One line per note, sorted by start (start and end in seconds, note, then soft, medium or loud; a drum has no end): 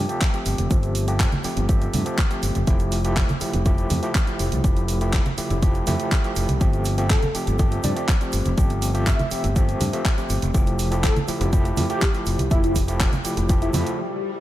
0.09 0.23 F3 medium
0.09 0.23 A3 medium
0.09 0.23 C4 medium
0.09 0.23 G4 loud
0.09 closed hi-hat soft
0.09 shaker soft
0.21 kick loud
0.21 clap loud
0.21 closed hi-hat medium
0.21 shaker medium
0.34 0.68 F3 medium
0.34 0.68 A3 medium
0.34 0.68 C4 medium
0.34 0.68 G4 medium
0.34 closed hi-hat soft
0.34 shaker soft
0.46 0.54 G1 medium
0.46 open hi-hat medium
0.46 shaker medium
0.58 0.66 F1 medium
0.58 closed hi-hat medium
0.58 high conga medium
0.58 shaker soft
0.70 1.25 G1 medium
0.70 1.04 F3 medium
0.70 1.05 A3 medium
0.70 1.05 C4 medium
0.70 1.05 G4 medium
0.70 kick loud
0.70 closed hi-hat soft
0.70 shaker medium
0.83 closed hi-hat soft
0.83 shaker soft
0.95 open hi-hat loud
0.95 shaker medium
1.07 1.29 F3 medium
1.07 1.30 A3 medium
1.07 1.30 C4 medium
1.07 1.30 G4 loud
1.07 closed hi-hat medium
1.07 shaker soft
1.20 kick loud
1.20 clap loud
1.20 closed hi-hat medium
1.20 shaker medium
1.32 closed hi-hat soft
1.32 high conga medium
1.32 shaker soft
1.44 1.66 F3 medium
1.44 1.66 A3 medium
1.44 1.66 C4 medium
1.44 1.66 G4 medium
1.44 muted fingered electric bass stroke soft
1.44 open hi-hat medium
1.44 shaker medium
1.57 1.86 G1 medium
1.57 closed hi-hat soft
1.57 low conga medium
1.57 shaker soft
1.68 2.03 F3 medium
1.68 2.03 A3 medium
1.68 2.03 C4 medium
1.68 2.03 G4 loud
1.68 kick loud
1.68 closed hi-hat soft
1.68 shaker soft
1.81 closed hi-hat soft
1.81 shaker soft
1.93 2.02 G2 medium
1.93 open hi-hat loud
1.93 high conga medium
1.93 low conga medium
1.93 shaker medium
2.05 2.19 F3 medium
2.05 2.19 A3 medium
2.05 2.20 C4 medium
2.05 2.20 G4 loud
2.05 closed hi-hat medium
2.05 shaker soft
2.18 kick loud
2.18 clap loud
2.18 closed hi-hat soft
2.18 shaker soft
2.30 2.64 F3 medium
2.30 2.64 A3 medium
2.30 2.65 C4 medium
2.30 2.65 G4 medium
2.30 closed hi-hat soft
2.30 shaker soft
2.42 2.51 G1 medium
2.42 open hi-hat medium
2.42 shaker medium
2.55 2.63 F1 medium
2.55 closed hi-hat medium
2.55 high conga medium
2.55 shaker soft
2.67 3.22 F1 medium
2.67 3.01 F3 medium
2.67 3.01 A3 medium
2.67 3.02 E4 medium
2.67 3.02 G4 medium
2.67 kick loud
2.67 closed hi-hat soft
2.67 shaker soft
2.79 closed hi-hat soft
2.79 shaker soft
2.92 open hi-hat loud
2.92 shaker medium
3.04 3.26 F3 medium
3.04 3.26 A3 medium
3.04 3.26 E4 medium
3.04 3.27 G4 loud
3.04 closed hi-hat soft
3.04 shaker soft
3.16 kick loud
3.16 clap loud
3.16 closed hi-hat soft
3.16 shaker soft
3.29 closed hi-hat soft
3.29 high conga medium
3.29 shaker soft
3.41 3.63 F3 medium
3.41 3.63 A3 medium
3.41 3.63 E4 medium
3.41 3.63 G4 medium
3.41 muted fingered electric bass stroke soft
3.41 open hi-hat medium
3.41 shaker medium
3.53 3.83 F1 medium
3.53 closed hi-hat soft
3.53 low conga medium
3.53 shaker soft
3.65 4.00 F3 medium
3.65 4.00 A3 medium
3.65 4.00 E4 medium
3.65 4.00 G4 loud
3.65 kick loud
3.65 closed hi-hat soft
3.65 shaker soft
3.78 closed hi-hat soft
3.78 shaker soft
3.90 3.98 F2 medium
3.90 open hi-hat loud
3.90 high conga medium
3.90 low conga medium
3.90 shaker medium
4.02 4.16 F3 medium
4.02 4.16 A3 medium
4.02 4.16 E4 medium
4.02 4.17 G4 loud
4.02 closed hi-hat medium
4.02 shaker soft
4.15 kick loud
4.15 clap loud
4.15 closed hi-hat soft
4.15 shaker soft
4.27 4.61 F3 medium
4.27 4.61 A3 medium
4.27 4.61 E4 medium
4.27 4.61 G4 medium
4.27 closed hi-hat soft
4.27 shaker soft
4.39 4.48 F1 medium
4.39 open hi-hat medium
4.39 shaker medium
4.52 4.60 C2 medium
4.52 closed hi-hat medium
4.52 high conga medium
4.52 shaker soft
4.63 5.19 F1 medium
4.63 4.98 F3 medium
4.63 4.98 A3 medium
4.63 4.98 E4 medium
4.63 4.98 G4 medium
4.63 kick loud
4.63 closed hi-hat soft
4.63 shaker medium
4.76 closed hi-hat soft
4.76 shaker soft
4.88 open hi-hat loud
4.88 shaker medium
5.01 5.23 F3 medium
5.01 5.23 A3 medium
5.01 5.23 E4 medium
5.01 5.23 G4 loud
5.01 closed hi-hat soft
5.01 shaker soft
5.13 kick loud
5.13 clap loud
5.13 closed hi-hat soft
5.13 shaker soft
5.25 closed hi-hat soft
5.25 high conga medium
5.25 shaker soft
5.37 5.59 F3 medium
5.37 5.59 A3 medium
5.37 5.60 E4 medium
5.37 5.60 G4 loud
5.37 muted fingered electric bass stroke soft
5.37 open hi-hat loud
5.37 shaker medium
5.50 5.80 F1 medium
5.50 closed hi-hat soft
5.50 low conga medium
5.50 shaker soft
5.62 5.84 F3 loud
5.62 5.84 A3 medium
5.62 5.85 E4 medium
5.62 5.85 G4 loud
5.62 kick loud
5.62 closed hi-hat soft
5.62 shaker soft
5.74 closed hi-hat soft
5.74 shaker soft
5.87 5.95 F2 medium
5.87 6.21 F3 medium
5.87 6.21 A3 medium
5.87 6.21 E4 medium
5.87 6.21 G4 medium
5.87 open hi-hat loud
5.87 high conga medium
5.87 low conga medium
5.87 shaker medium
5.99 closed hi-hat soft
5.99 shaker soft
6.11 kick loud
6.11 clap loud
6.11 closed hi-hat soft
6.11 shaker soft
6.24 6.58 F3 medium
6.24 6.58 A3 medium
6.24 6.58 E4 medium
6.24 6.58 G4 medium
6.24 closed hi-hat soft
6.24 shaker soft
6.36 6.44 F1 medium
6.36 open hi-hat medium
6.36 shaker medium
6.48 6.56 C2 medium
6.48 closed hi-hat soft
6.48 high conga medium
6.48 shaker soft
6.60 7.15 G1 medium
6.60 6.95 F3 medium
6.60 6.95 A3 medium
6.60 6.95 C4 medium
6.60 6.95 G4 medium
6.60 kick loud
6.60 closed hi-hat soft
6.60 shaker soft
6.73 closed hi-hat soft
6.73 shaker soft
6.85 open hi-hat loud
6.85 shaker medium
6.97 7.20 F3 medium
6.97 7.20 A3 medium
6.97 7.20 C4 medium
6.97 7.20 G4 loud
6.97 closed hi-hat soft
6.97 shaker soft
7.10 7.27 A4 medium
7.10 kick loud
7.10 clap loud
7.10 closed hi-hat soft
7.10 shaker medium
7.22 closed hi-hat soft
7.22 high conga medium
7.22 shaker soft
7.34 7.56 F3 medium
7.34 7.56 A3 medium
7.34 7.56 C4 medium
7.34 7.56 G4 loud
7.34 muted fingered electric bass stroke soft
7.34 open hi-hat medium
7.34 shaker medium
7.47 7.77 G1 loud
7.47 closed hi-hat soft
7.47 low conga medium
7.47 shaker soft
7.59 7.93 F3 medium
7.59 7.93 A3 medium
7.59 7.93 C4 medium
7.59 7.94 G4 loud
7.59 kick loud
7.59 closed hi-hat soft
7.59 shaker soft
7.72 closed hi-hat soft
7.72 shaker soft
7.83 7.92 G2 medium
7.83 8.01 D5 medium
7.83 open hi-hat loud
7.83 high conga medium
7.83 low conga medium
7.83 shaker medium
7.96 8.10 F3 medium
7.96 8.10 A3 medium
7.96 8.10 C4 medium
7.96 8.10 G4 loud
7.96 closed hi-hat soft
7.96 shaker soft
8.08 kick loud
8.08 clap loud
8.08 closed hi-hat soft
8.08 shaker medium
8.21 8.54 F3 medium
8.21 8.55 A3 medium
8.21 8.55 C4 medium
8.21 8.55 G4 medium
8.21 closed hi-hat soft
8.21 shaker soft
8.32 8.41 G1 medium
8.32 open hi-hat medium
8.32 shaker medium
8.45 8.53 F1 medium
8.45 closed hi-hat soft
8.45 high conga medium
8.45 shaker soft
8.57 9.12 G1 medium
8.57 8.91 F3 medium
8.57 8.92 A3 medium
8.57 8.92 C4 medium
8.57 8.92 G4 medium
8.57 kick loud
8.57 closed hi-hat soft
8.57 shaker medium
8.70 closed hi-hat soft
8.70 shaker soft
8.82 open hi-hat loud
8.82 shaker loud
8.94 9.16 F3 medium
8.94 9.16 A3 medium
8.94 9.17 C4 medium
8.94 9.17 G4 loud
8.94 closed hi-hat soft
8.94 shaker soft
9.07 9.44 E5 medium
9.07 kick loud
9.07 clap loud
9.07 closed hi-hat soft
9.07 shaker medium
9.19 closed hi-hat soft
9.19 high conga medium
9.19 shaker soft
9.31 9.53 F3 medium
9.31 9.53 A3 medium
9.31 9.53 C4 medium
9.31 9.53 G4 medium
9.31 muted fingered electric bass stroke soft
9.31 open hi-hat medium
9.31 shaker medium
9.44 9.74 G1 loud
9.44 closed hi-hat soft
9.44 low conga medium
9.44 shaker soft
9.55 9.90 F3 medium
9.55 9.90 A3 medium
9.55 9.90 C4 medium
9.55 9.90 G4 loud
9.55 kick loud
9.55 closed hi-hat soft
9.55 shaker medium
9.69 closed hi-hat soft
9.69 shaker soft
9.80 9.88 G2 medium
9.80 open hi-hat loud
9.80 high conga medium
9.80 low conga medium
9.80 shaker medium
9.92 10.06 F3 medium
9.92 10.06 A3 medium
9.92 10.07 C4 medium
9.92 10.07 G4 loud
9.92 closed hi-hat medium
9.92 shaker soft
10.05 kick loud
10.05 clap loud
10.05 closed hi-hat soft
10.05 shaker medium
10.17 10.51 F3 medium
10.17 10.51 A3 medium
10.17 10.51 C4 medium
10.17 10.52 G4 medium
10.17 closed hi-hat soft
10.17 shaker soft
10.30 10.38 G1 medium
10.30 open hi-hat medium
10.30 shaker medium
10.42 10.50 F1 medium
10.42 closed hi-hat medium
10.42 high conga medium
10.42 shaker soft
10.54 11.09 F1 medium
10.54 10.88 F3 medium
10.54 10.88 A3 medium
10.54 10.88 E4 medium
10.54 10.89 G4 medium
10.54 kick loud
10.54 closed hi-hat medium
10.54 shaker medium
10.67 closed hi-hat soft
10.67 shaker soft
10.79 open hi-hat loud
10.79 shaker loud
10.91 11.13 F3 medium
10.91 11.13 A3 medium
10.91 11.13 E4 medium
10.91 11.14 G4 loud
10.91 closed hi-hat soft
10.91 shaker soft
11.04 11.20 A4 medium
11.04 kick loud
11.04 clap loud
11.04 closed hi-hat medium
11.04 shaker medium
11.16 closed hi-hat soft
11.16 high conga medium
11.16 shaker soft
11.28 11.50 F3 medium
11.28 11.50 A3 medium
11.28 11.50 E4 medium
11.28 11.50 G4 loud
11.28 muted fingered electric bass stroke soft
11.28 open hi-hat medium
11.28 shaker medium
11.41 11.70 F1 loud
11.41 closed hi-hat medium
11.41 low conga medium
11.41 shaker soft
11.52 11.87 F3 loud
11.52 11.87 A3 medium
11.52 11.87 E4 medium
11.52 11.87 G4 loud
11.52 kick loud
11.52 closed hi-hat medium
11.52 shaker medium
11.65 closed hi-hat soft
11.65 shaker soft
11.77 11.85 F2 medium
11.77 open hi-hat loud
11.77 high conga medium
11.77 low conga medium
11.77 shaker medium
11.89 12.03 F3 medium
11.89 12.03 A3 medium
11.89 12.03 E4 medium
11.89 12.06 G4 medium
11.89 12.03 G4 loud
11.89 closed hi-hat medium
11.89 shaker soft
12.01 kick loud
12.01 clap loud
12.01 closed hi-hat medium
12.01 shaker medium
12.14 12.48 F3 medium
12.14 12.48 A3 medium
12.14 12.48 E4 medium
12.14 12.48 G4 medium
12.14 closed hi-hat soft
12.14 shaker soft
12.26 12.34 F1 medium
12.26 open hi-hat medium
12.26 shaker medium
12.38 12.47 C2 medium
12.38 closed hi-hat medium
12.38 high conga medium
12.38 shaker soft
12.50 13.06 F1 medium
12.50 12.85 F3 medium
12.50 12.85 A3 medium
12.50 12.59 E4 medium
12.50 12.85 E4 medium
12.50 12.85 G4 medium
12.50 kick loud
12.50 closed hi-hat medium
12.50 shaker medium
12.63 12.71 E4 medium
12.63 closed hi-hat soft
12.63 shaker soft
12.75 kick medium
12.75 open hi-hat loud
12.75 low conga medium
12.75 shaker medium
12.87 13.10 F3 medium
12.87 13.10 A3 medium
12.87 13.10 E4 medium
12.87 13.10 G4 loud
12.87 closed hi-hat soft
12.87 shaker soft
13.00 kick loud
13.00 clap loud
13.00 closed hi-hat medium
13.00 shaker medium
13.13 closed hi-hat soft
13.13 high conga medium
13.13 shaker soft
13.24 13.46 F3 medium
13.24 13.46 A3 medium
13.24 13.46 E4 medium
13.24 13.47 G4 medium
13.24 muted fingered electric bass stroke soft
13.24 open hi-hat medium
13.24 shaker loud
13.37 13.67 F1 loud
13.37 closed hi-hat medium
13.37 low conga medium
13.37 shaker soft
13.49 13.71 F3 loud
13.49 13.71 A3 medium
13.49 13.71 E4 medium
13.49 13.72 G4 loud
13.49 kick loud
13.49 closed hi-hat medium
13.49 swell medium
13.49 shaker medium
13.62 13.70 E4 medium
13.62 closed hi-hat soft
13.62 shaker soft
13.73 13.82 F2 medium
13.73 13.98 F3 medium
13.73 13.98 A3 medium
13.73 13.98 E4 medium
13.73 13.82 E4 medium
13.73 13.99 G4 medium
13.73 open hi-hat loud
13.73 high conga medium
13.73 low conga medium
13.73 shaker medium
13.87 closed hi-hat medium
13.87 shaker soft